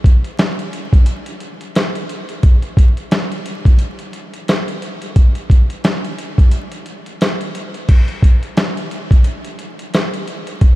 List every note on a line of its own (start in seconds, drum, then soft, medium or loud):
0.04 kick loud
0.04 closed hi-hat medium
0.24 closed hi-hat medium
0.39 snare loud
0.39 closed hi-hat medium
0.59 closed hi-hat medium
0.73 closed hi-hat medium
0.93 kick loud
0.93 closed hi-hat medium
1.06 closed hi-hat medium
1.26 closed hi-hat medium
1.40 closed hi-hat medium
1.61 closed hi-hat medium
1.75 snare loud
1.75 closed hi-hat medium
1.95 closed hi-hat medium
2.09 closed hi-hat medium
2.29 closed hi-hat medium
2.43 kick loud
2.43 closed hi-hat medium
2.62 closed hi-hat medium
2.77 kick loud
2.77 closed hi-hat medium
2.97 closed hi-hat soft
3.11 snare loud
3.11 closed hi-hat medium
3.32 closed hi-hat medium
3.46 closed hi-hat medium
3.65 kick loud
3.65 closed hi-hat medium
3.79 closed hi-hat medium
3.99 closed hi-hat medium
4.13 closed hi-hat medium
4.33 closed hi-hat medium
4.48 snare loud
4.48 closed hi-hat loud
4.68 closed hi-hat medium
4.82 closed hi-hat medium
5.02 closed hi-hat medium
5.16 kick loud
5.16 closed hi-hat medium
5.35 closed hi-hat medium
5.50 kick loud
5.50 closed hi-hat medium
5.70 closed hi-hat medium
5.84 snare loud
5.84 closed hi-hat medium
6.04 closed hi-hat medium
6.18 closed hi-hat medium
6.38 kick loud
6.38 closed hi-hat medium
6.51 closed hi-hat medium
6.72 closed hi-hat medium
6.86 closed hi-hat medium
7.06 closed hi-hat medium
7.21 snare loud
7.21 closed hi-hat medium
7.41 closed hi-hat medium
7.55 closed hi-hat medium
7.74 closed hi-hat medium
7.89 kick loud
7.89 closed hi-hat medium
7.89 crash medium
8.08 closed hi-hat medium
8.22 kick loud
8.22 closed hi-hat medium
8.43 closed hi-hat soft
8.57 snare loud
8.57 closed hi-hat medium
8.77 closed hi-hat medium
8.91 closed hi-hat medium
9.11 kick loud
9.11 closed hi-hat medium
9.24 closed hi-hat medium
9.44 closed hi-hat medium
9.59 closed hi-hat medium
9.79 closed hi-hat medium
9.94 snare loud
9.94 closed hi-hat loud
10.14 closed hi-hat medium
10.28 closed hi-hat medium
10.47 closed hi-hat medium
10.61 kick loud
10.61 closed hi-hat medium